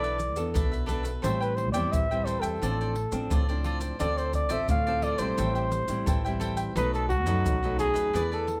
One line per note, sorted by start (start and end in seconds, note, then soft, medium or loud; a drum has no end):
0.00 0.36 B1 medium
0.00 0.52 E3 medium
0.00 0.19 B3 soft
0.00 0.19 D4 soft
0.00 0.19 A4 medium
0.00 0.50 D5 loud
0.00 0.18 E5 soft
0.00 pandeiro soft
0.00 maracas soft
0.04 0.18 A4 soft
0.04 0.18 B4 soft
0.18 muted cavaquinho stroke soft
0.18 pandeiro medium
0.18 maracas medium
0.36 0.51 E2 medium
0.36 0.83 B3 medium
0.36 0.84 D4 medium
0.36 0.84 A4 medium
0.36 pandeiro medium
0.36 maracas medium
0.54 1.14 B1 medium
0.54 1.21 B2 soft
0.54 0.70 D4 medium
0.54 0.71 A4 medium
0.54 0.71 B4 medium
0.54 0.70 E5 medium
0.54 pandeiro medium
0.54 maracas medium
0.54 surdo loud
0.72 0.86 A4 soft
0.72 0.86 B4 soft
0.72 0.87 E5 soft
0.72 pandeiro soft
0.72 maracas soft
0.86 1.10 B3 medium
0.86 1.04 D4 medium
0.86 1.10 D4 medium
0.86 1.04 A4 medium
0.86 1.10 A4 medium
0.86 1.03 B4 medium
0.86 1.02 E5 medium
0.86 pandeiro medium
0.86 maracas medium
1.03 1.21 A4 soft
1.03 1.21 B4 soft
1.03 1.21 E5 soft
1.03 pandeiro medium
1.03 maracas medium
1.22 1.73 A1 loud
1.22 1.90 A2 medium
1.22 1.71 G3 medium
1.22 1.71 C4 soft
1.22 1.71 E4 medium
1.22 1.39 A4 medium
1.22 1.39 C5 medium
1.22 1.43 C5 medium
1.22 1.40 E5 medium
1.22 1.39 G5 medium
1.22 pandeiro medium
1.22 maracas medium
1.22 surdo medium
1.41 1.57 B4 medium
1.41 1.56 C5 soft
1.41 1.56 E5 soft
1.41 1.57 G5 soft
1.41 pandeiro soft
1.41 maracas soft
1.56 1.72 C5 medium
1.56 muted cavaquinho stroke soft
1.56 pandeiro medium
1.72 1.89 E2 medium
1.72 2.04 G3 medium
1.72 2.04 C4 medium
1.72 2.04 E4 medium
1.72 2.09 C5 medium
1.72 1.94 D5 medium
1.72 2.08 E5 medium
1.72 2.08 G5 medium
1.72 pandeiro medium
1.72 maracas medium
1.92 2.37 A1 medium
1.92 2.59 E3 medium
1.92 2.27 E5 medium
1.92 pandeiro medium
1.92 maracas medium
1.92 surdo loud
2.11 2.57 G3 medium
2.11 2.57 C4 medium
2.11 2.58 E4 medium
2.11 2.25 C5 soft
2.11 2.25 E5 soft
2.11 2.25 G5 soft
2.11 pandeiro soft
2.11 maracas soft
2.25 2.42 A4 soft
2.25 2.42 C5 medium
2.25 2.42 C5 soft
2.25 2.41 E5 soft
2.25 2.40 G5 soft
2.25 pandeiro medium
2.25 maracas medium
2.40 2.58 E2 medium
2.40 3.63 A4 medium
2.40 2.60 C5 soft
2.40 2.60 E5 medium
2.40 2.59 G5 medium
2.40 pandeiro medium
2.40 maracas medium
2.62 3.06 A1 medium
2.62 3.28 A2 soft
2.62 2.94 F3 medium
2.62 2.95 C4 soft
2.62 2.95 D4 medium
2.62 2.78 F4 medium
2.62 2.78 A4 medium
2.62 2.78 C5 medium
2.62 2.78 D5 medium
2.62 pandeiro medium
2.62 maracas medium
2.62 surdo medium
2.81 2.94 A4 soft
2.81 2.94 C5 soft
2.81 2.95 D5 soft
2.81 pandeiro soft
2.81 maracas soft
2.95 muted cavaquinho stroke soft
2.95 pandeiro medium
3.12 3.28 A1 medium
3.12 3.42 F3 medium
3.12 3.42 C4 medium
3.12 3.42 D4 medium
3.12 pandeiro medium
3.12 maracas medium
3.30 3.90 C#2 medium
3.30 3.97 A2 medium
3.30 3.47 F4 medium
3.30 3.47 A4 medium
3.30 3.47 C5 medium
3.30 3.47 D5 medium
3.30 pandeiro medium
3.30 maracas medium
3.30 surdo loud
3.49 3.95 F3 medium
3.49 3.95 C4 medium
3.49 3.96 D4 medium
3.49 3.64 A4 soft
3.49 3.64 C5 soft
3.49 3.64 D5 soft
3.49 pandeiro soft
3.49 maracas soft
3.64 3.81 F4 medium
3.64 3.80 A4 medium
3.64 3.80 C5 medium
3.64 3.79 D5 medium
3.64 pandeiro medium
3.80 3.98 A4 soft
3.80 3.98 C5 soft
3.80 3.97 D5 soft
3.80 pandeiro medium
3.80 maracas medium
3.99 4.50 D2 loud
3.99 4.66 D3 medium
3.99 4.46 C4 medium
3.99 4.16 F4 medium
3.99 4.47 F4 medium
3.99 4.16 A4 medium
3.99 4.47 A4 medium
3.99 4.16 C5 medium
3.99 4.19 D5 medium
3.99 4.16 D5 medium
3.99 pandeiro medium
3.99 maracas medium
3.99 surdo medium
4.17 4.32 A4 soft
4.17 4.35 C5 medium
4.17 4.32 C5 soft
4.17 4.33 D5 soft
4.17 pandeiro soft
4.17 maracas soft
4.33 4.53 D5 medium
4.33 muted cavaquinho stroke soft
4.33 pandeiro medium
4.33 maracas medium
4.33 surdo medium
4.49 4.66 A1 medium
4.49 4.80 C4 medium
4.49 4.80 F4 medium
4.49 4.84 A4 medium
4.49 4.80 A4 medium
4.49 4.84 C5 medium
4.49 4.84 D5 medium
4.49 4.69 E5 medium
4.49 pandeiro medium
4.49 maracas medium
4.68 5.13 D2 medium
4.68 5.35 A2 medium
4.68 5.05 F5 medium
4.68 pandeiro medium
4.68 maracas medium
4.68 surdo loud
4.87 5.16 C4 medium
4.87 5.16 F4 medium
4.87 5.16 A4 medium
4.87 5.02 A4 soft
4.87 5.02 C5 soft
4.87 5.02 D5 medium
4.87 pandeiro soft
4.87 maracas soft
5.02 5.19 F4 medium
5.02 5.18 A4 soft
5.02 5.17 C5 medium
5.02 5.21 D5 medium
5.02 5.17 D5 medium
5.02 pandeiro medium
5.18 5.34 B1 medium
5.18 5.84 G3 medium
5.18 5.84 C4 medium
5.18 5.84 E4 medium
5.18 5.36 A4 medium
5.18 5.36 C5 medium
5.18 6.41 C5 medium
5.18 5.35 D5 medium
5.18 pandeiro medium
5.18 maracas medium
5.37 5.82 A1 loud
5.37 6.04 A2 soft
5.37 5.54 A4 medium
5.37 5.54 C5 medium
5.37 5.54 E5 medium
5.37 5.54 G5 medium
5.37 pandeiro medium
5.37 maracas medium
5.37 surdo medium
5.55 5.70 C5 soft
5.55 5.70 E5 soft
5.55 5.71 G5 soft
5.55 pandeiro soft
5.55 maracas soft
5.71 muted cavaquinho stroke soft
5.71 pandeiro medium
5.71 maracas medium
5.88 6.03 A1 medium
5.88 6.18 G3 medium
5.88 6.19 C4 medium
5.88 6.19 E4 medium
5.88 pandeiro medium
5.88 maracas medium
6.06 6.66 A1 medium
6.06 6.74 E3 medium
6.06 6.23 A4 medium
6.06 6.23 C5 medium
6.06 6.23 E5 medium
6.06 6.23 G5 medium
6.06 pandeiro medium
6.06 maracas medium
6.06 surdo loud
6.25 6.72 G3 medium
6.25 6.72 C4 medium
6.25 6.72 E4 medium
6.25 6.39 C5 soft
6.25 6.40 E5 soft
6.25 6.40 G5 soft
6.25 pandeiro soft
6.25 maracas soft
6.40 6.57 A4 medium
6.40 6.57 C5 medium
6.40 6.56 E5 medium
6.40 6.55 G5 medium
6.40 pandeiro medium
6.40 maracas medium
6.57 6.74 C5 soft
6.57 6.74 E5 soft
6.57 6.74 G5 medium
6.57 pandeiro medium
6.57 maracas medium
6.76 7.26 B1 loud
6.76 7.42 B2 medium
6.76 7.09 F#3 medium
6.76 7.09 A3 medium
6.76 6.92 D#4 medium
6.76 7.09 D#4 medium
6.76 6.92 A4 medium
6.76 6.92 B4 medium
6.76 6.93 B4 loud
6.76 6.92 D#5 medium
6.76 pandeiro medium
6.76 maracas medium
6.76 surdo medium
6.94 7.09 A4 loud
6.94 7.09 A4 soft
6.94 7.10 B4 soft
6.94 7.09 D#5 soft
6.94 pandeiro soft
6.94 maracas soft
7.09 7.75 F#4 loud
7.09 muted cavaquinho stroke soft
7.09 pandeiro medium
7.09 surdo medium
7.26 7.41 F#2 loud
7.26 7.56 F#3 medium
7.26 7.56 A3 medium
7.26 7.57 D#4 medium
7.26 7.61 A4 medium
7.26 7.60 B4 medium
7.26 7.60 D#5 medium
7.26 pandeiro medium
7.26 maracas medium
7.45 7.89 B1 medium
7.45 8.11 F#2 medium
7.45 pandeiro medium
7.45 maracas medium
7.45 surdo loud
7.63 8.10 F#3 medium
7.63 8.10 A3 medium
7.63 8.10 D#4 medium
7.63 7.78 A4 soft
7.63 7.79 B4 soft
7.63 7.78 D#5 soft
7.63 pandeiro soft
7.63 maracas soft
7.79 7.95 D#4 soft
7.79 8.27 G#4 medium
7.79 7.94 A4 soft
7.79 7.93 B4 soft
7.79 7.93 D#5 medium
7.79 pandeiro medium
7.79 maracas medium
7.94 8.10 D#2 medium
7.94 8.12 A4 soft
7.94 8.12 B4 medium
7.94 8.11 D#5 medium
7.94 pandeiro medium
7.94 maracas medium
8.13 8.58 E2 loud
8.13 8.60 E3 medium
8.13 8.60 B3 medium
8.13 8.60 D4 soft
8.13 8.30 E4 medium
8.13 8.30 G#4 medium
8.13 8.60 G#4 medium
8.13 8.30 B4 medium
8.13 8.30 D5 medium
8.13 pandeiro medium
8.13 maracas medium
8.13 surdo medium
8.32 8.46 G#4 soft
8.32 8.60 A4 medium
8.32 8.46 B4 soft
8.32 8.47 D5 soft
8.32 pandeiro soft
8.32 maracas soft
8.47 muted cavaquinho stroke soft
8.47 pandeiro medium